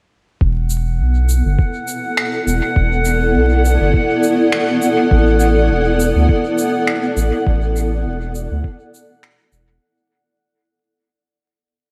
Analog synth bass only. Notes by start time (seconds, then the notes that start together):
0.41 E1
1.00 B1
1.45 G1
2.47 E1
2.76 E1
3.35 B1
3.81 G1
5.11 A1
5.70 E1
6.16 D2
7.17 A1
7.47 A1
8.05 E1
8.51 D2
9.52 E1